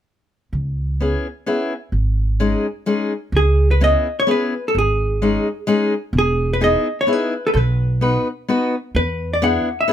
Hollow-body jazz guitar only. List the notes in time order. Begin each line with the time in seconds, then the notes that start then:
3.37 G#4
3.71 B4
3.84 D#5
4.20 C#5
4.31 B4
4.68 A4
4.78 G#4
6.18 G#4
6.53 B4
6.64 D#5
7.01 C#5
7.13 B4
7.47 A4 B4
7.54 A4 B4
8.96 B4
9.33 D5
9.44 F#5
9.81 E5